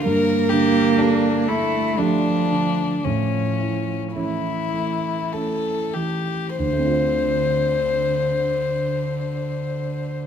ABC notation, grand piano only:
X:1
M:3/4
L:1/8
Q:1/4=51
K:Dm
V:1 name="Grand piano"
G,, D, [DGA] A, [A,DG] D, | A,, E [A,^CE] A, [A,CE] E, | [D,,D,A,CFc]6 |]